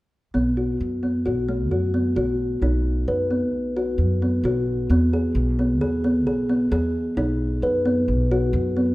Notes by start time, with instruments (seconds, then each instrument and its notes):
0.34 upright bass B1, kalimba B3
0.57 kalimba F#4
0.80 upright bass F#2
1.03 kalimba B3
1.26 upright bass B1, kalimba F#4
1.49 kalimba A3
1.71 upright bass F#2, kalimba F#4
1.94 kalimba B3
2.16 upright bass B1, kalimba F#4
2.62 upright bass B1, kalimba D#4
3.08 upright bass F#2, kalimba B4
3.31 kalimba B3
3.53 upright bass B1
3.77 kalimba F#4
3.98 upright bass F#2
4.22 kalimba B3
4.43 upright bass B1, kalimba F#4
4.89 upright bass E2, kalimba B3
5.13 kalimba G#4
5.35 upright bass B1
5.59 kalimba B3
5.80 upright bass E2, kalimba G#4
6.04 kalimba B3
6.26 upright bass B1, kalimba G#4
6.49 kalimba B3
6.71 upright bass E2, kalimba G#4
7.17 upright bass B1, kalimba D#4
7.62 upright bass F#2, kalimba B4
7.86 kalimba B3
8.08 upright bass B1
8.31 kalimba F#4
8.53 upright bass F#2
8.77 kalimba B3